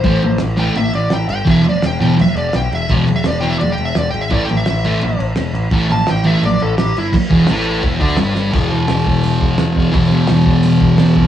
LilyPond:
<<
  \new Staff \with { instrumentName = "Electric slide guitar" } { \time 4/4 \key e \minor \tempo 4 = 170 c''4 r8 g''8 e''8 d''8 g''8 g''8 | e''8 d''8 g''8 g''8 e''8 d''8 g''8 e''8 | \tuplet 3/2 { r4 e''8 d''8 g''8 e''8 d''8 g''8 e''8 d''8 g''8 e''8 } | \tuplet 3/2 { d''8 g''8 e''8~ } e''4. r4. |
r8 a''8 g''8 e''8 d''8 a'8 g'8 e'8 | r1 | r1 | r1 | }
  \new Staff \with { instrumentName = "Distorted electric guitar" } { \clef bass \time 4/4 \key e \minor <a, e a>8 r4 <a, e a>8 r2 | <e, b, e>8 r4 <e, b, e>8 r2 | <e, b, e>8 r4 <e, b, e>8 r2 | <a, e a>8 r4 <a, e a>8 r2 |
<a, e a>8 r4 <a, e a>8 r2 | r8 <e, e>8 <a, a>4 <e, e>8 <d d'>8 <g, g>4 | <e, b, e>1 | <e, b, e>1 | }
  \new Staff \with { instrumentName = "Picked electric bass" } { \clef bass \time 4/4 \key e \minor a,,8 a,,8 a,,4 a,,8 a,,8 a,,8 g,,8 | e,,8 e,,8 e,,4 e,,8 e,,8 b,,8 e,,8 | e,,8 e,,8 e,,4 e,,8 e,,8 e,,8 gis,,8 | a,,8 a,,8 a,,4 a,,8 a,,8 e,,8 a,,8 |
a,,8 a,,8 a,,4 a,,8 a,,8 a,,8 g,,8 | r8 e,,8 a,,4 e,,8 d,8 g,,4 | e,,8 e,,8 e,,8 e,,8 e,,8 e,,8 e,,8 e,,8 | e,,8 e,,8 e,,8 e,,8 e,,8 e,,8 e,,8 c,8 | }
  \new DrumStaff \with { instrumentName = "Drums" } \drummode { \time 4/4 <cymc bd>8 cymc8 <cymc sn>8 cymc8 cymc8 cymc8 <cymc sn>8 cymc8 | <cymc bd>8 cymc8 <cymc sn>8 cymc8 cymc8 cymc8 <cymc sn>8 cymc8 | <cymc bd>8 cymc8 <cymc sn>8 cymc8 cymc8 cymc8 <cymc sn>8 cymc8 | <cymc bd>8 cymc8 <cymc sn>8 cymc8 cymc8 cymc8 <cymc sn>8 cymc8 |
<cymc bd>8 cymc8 <cymc sn>8 cymc8 cymc8 cymc8 <cymc sn>8 cymc8 | <cymc bd>8 <cymc bd>8 <cymc sn>8 cymc8 <cymc bd>8 <cymc bd>16 sn16 <cymc sn>8 sn8 | <cymc bd>4 <hho sn>8 bd8 hho8 bd8 <hho sn>8 bd8 | <hho bd>4 <hho sn>8 bd8 hho8 bd8 <hho sn>8 bd8 | }
>>